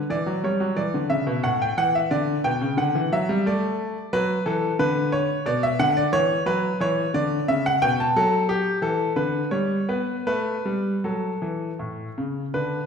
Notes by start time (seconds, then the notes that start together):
Already playing: B4
0.10 E3 D5
0.27 F#3
0.44 G3 C#5
0.60 F#3
0.76 E3 D5
0.94 D3
1.09 C#3 E5
1.27 B2
1.43 A2 F#5
1.62 G5
1.78 E3 F#5
1.95 E5
2.11 D3 D5
2.44 B2 G5
2.62 C#3
2.77 D3 F#5
2.95 E3
3.12 F#3 E5
3.29 G3
3.46 A3 D5
4.13 F#3 B4
4.46 E3 A4
4.79 D3 B4
5.12 C#5
5.46 B2 D5
5.63 E5
5.79 D3 F#5
5.97 D5
6.13 E3 C#5
6.46 F#3 B4
6.80 E3 C#5
7.14 D3 D5
7.48 C#3 E5
7.66 F#5
7.82 B2 G5
8.00 A5
8.16 F#3 A4
8.49 G4
8.82 E3 A4
9.16 D3 B4
9.51 G3 C#5
9.89 B3 B4
10.27 A3 B4
10.65 G3
11.04 F#3 A4
11.42 E3
11.79 A2
12.18 C#3
12.54 D3 D4 B4